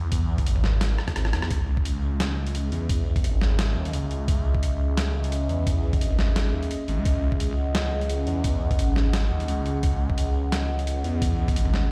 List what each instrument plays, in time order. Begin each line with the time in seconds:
Already playing: detuned saw bass E2
0.12 kick, closed hi-hat
0.38 kick, closed hi-hat
0.46 detuned saw bass G#1, closed hi-hat
0.56 mid tom
0.64 snare
0.81 snare, closed hi-hat
0.98 cross-stick
1.08 cross-stick, closed hi-hat, mid tom
1.16 detuned saw bass G#1, cross-stick, closed hi-hat
1.25 cross-stick
1.33 detuned saw bass E2, cross-stick, closed hi-hat
1.42 cross-stick
1.50 detuned saw bass C#2, analog synth pad C#4 G#4 D#5 E5, kick, closed hi-hat
1.77 kick
1.85 closed hi-hat
2.20 snare, closed hi-hat
2.47 closed hi-hat
2.55 closed hi-hat
2.72 detuned saw bass E2, closed hi-hat
2.89 kick, closed hi-hat
3.16 kick, closed hi-hat
3.24 detuned saw bass G#1, closed hi-hat
3.41 snare
3.59 snare, closed hi-hat
3.76 detuned saw bass D#2
3.85 closed hi-hat
3.93 detuned saw bass C#2, closed hi-hat
4.11 closed hi-hat
4.28 detuned saw bass C#2, kick, closed hi-hat
4.55 kick
4.63 closed hi-hat
4.97 snare, closed hi-hat
5.24 closed hi-hat
5.32 closed hi-hat
5.49 detuned saw bass E2, closed hi-hat
5.67 kick, closed hi-hat
5.93 kick, closed hi-hat
6.01 detuned saw bass G#1, closed hi-hat
6.19 snare
6.36 snare, closed hi-hat
6.53 detuned saw bass D#2
6.63 closed hi-hat
6.71 closed hi-hat
6.88 detuned saw bass G#1, closed hi-hat
6.98 detuned saw bass C#2
7.05 detuned saw bass C#2, analog synth pad F#5, kick, closed hi-hat
7.32 kick
7.40 closed hi-hat
7.75 snare, closed hi-hat
8.01 closed hi-hat
8.10 closed hi-hat
8.27 detuned saw bass E2, closed hi-hat
8.44 kick, closed hi-hat
8.71 kick, closed hi-hat
8.79 detuned saw bass G#1, closed hi-hat
8.96 snare
9.13 snare, closed hi-hat
9.31 detuned saw bass D#2
9.40 closed hi-hat
9.48 detuned saw bass C#2, closed hi-hat
9.66 closed hi-hat
9.83 detuned saw bass C#2, kick, closed hi-hat
10.10 kick
10.18 closed hi-hat
10.52 snare, closed hi-hat
10.79 closed hi-hat
10.87 closed hi-hat
11.04 detuned saw bass E2, closed hi-hat
11.22 kick, closed hi-hat
11.48 kick, closed hi-hat
11.56 detuned saw bass G#1, closed hi-hat
11.65 mid tom
11.74 snare